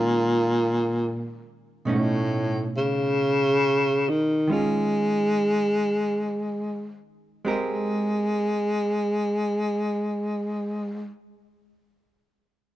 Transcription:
Already playing: baritone saxophone A#2, hollow-body jazz guitar D#3 G#3 C#4 F4
1.85 hollow-body jazz guitar B2 A3 C#4 D#4
1.91 baritone saxophone A2
2.77 baritone saxophone C#3
4.09 baritone saxophone D#3
4.47 hollow-body jazz guitar D#3 G#3 C#4
4.52 baritone saxophone G#3, hollow-body jazz guitar F4
7.45 hollow-body jazz guitar G#3 C4 G4 A#4
7.50 baritone saxophone G#3

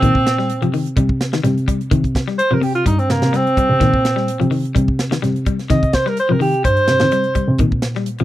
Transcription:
Already playing: alto saxophone C4
0.02 double bass A#2, clean electric guitar D#3, kick, closed hi-hat
0.15 kick
0.27 snare, closed hi-hat
0.38 clean electric guitar G3, snare
0.50 closed hi-hat
0.62 double bass C3, clean electric guitar F3, closed hi-hat
0.74 clean electric guitar D#3, open hi-hat
0.86 closed hi-hat
0.97 double bass C3, clean electric guitar G3, kick, closed hi-hat
1.09 kick
1.21 snare, closed hi-hat
1.33 clean electric guitar D#3, snare, closed hi-hat
1.43 double bass C3, clean electric guitar G3, snare, closed hi-hat
1.58 closed hi-hat
1.68 clean electric guitar G3, kick, closed hi-hat
1.81 closed hi-hat
1.91 double bass C3, clean electric guitar D#3, kick, closed hi-hat
2.04 kick, closed hi-hat
2.15 kick, snare, closed hi-hat
2.28 clean electric guitar G3, snare
2.39 alto saxophone C5, closed hi-hat
2.51 double bass C3, clean electric guitar F3, alto saxophone A#4
2.61 clean electric guitar C3, alto saxophone G4, open hi-hat
2.75 alto saxophone F4, closed hi-hat
2.86 double bass G2, clean electric guitar G3, alto saxophone D#4, kick, closed hi-hat
2.99 alto saxophone C4, closed hi-hat
3.10 double bass C3, alto saxophone A#3, snare, closed hi-hat
3.22 double bass C3, snare, closed hi-hat
3.33 clean electric guitar G3, alto saxophone C4, snare, closed hi-hat
3.47 closed hi-hat
3.57 double bass C3, clean electric guitar G3, kick, closed hi-hat
3.69 double bass C3
3.80 double bass A#2, clean electric guitar D#3, kick, snare, closed hi-hat
3.94 kick
4.05 snare, closed hi-hat
4.16 clean electric guitar G3, snare
4.28 closed hi-hat
4.40 double bass C3, clean electric guitar F3, closed hi-hat
4.51 clean electric guitar D#3, open hi-hat
4.65 closed hi-hat
4.75 double bass C3, clean electric guitar G3, kick, closed hi-hat
4.88 kick
4.99 snare, closed hi-hat
5.11 clean electric guitar D#3, snare, closed hi-hat
5.22 double bass C3, clean electric guitar G3, snare, closed hi-hat
5.36 closed hi-hat
5.46 clean electric guitar G3, kick, closed hi-hat
5.59 snare, closed hi-hat
5.70 double bass C3, clean electric guitar D#3, alto saxophone D#5, kick, snare, closed hi-hat
5.83 kick, closed hi-hat
5.93 alto saxophone C5, kick, snare, closed hi-hat
6.06 clean electric guitar G3, alto saxophone A#4, snare
6.17 alto saxophone C5, closed hi-hat
6.29 double bass C3, clean electric guitar F3, alto saxophone A#4
6.40 clean electric guitar D#3, alto saxophone G4, open hi-hat
6.54 closed hi-hat
6.64 double bass G2, alto saxophone C5, muted clean electric guitar stroke, kick, closed hi-hat
6.77 closed hi-hat
6.88 double bass C3, snare, closed hi-hat
7.00 double bass C3, clean electric guitar D#3, snare, closed hi-hat
7.12 clean electric guitar G3, snare, closed hi-hat
7.24 closed hi-hat
7.35 double bass C3, clean electric guitar G3, kick, closed hi-hat
7.48 double bass C3
7.58 double bass A#2, clean electric guitar D#3, kick, closed hi-hat
7.72 kick
7.82 snare, closed hi-hat
7.95 clean electric guitar G3, snare
8.06 closed hi-hat
8.19 double bass C3, clean electric guitar F3, closed hi-hat

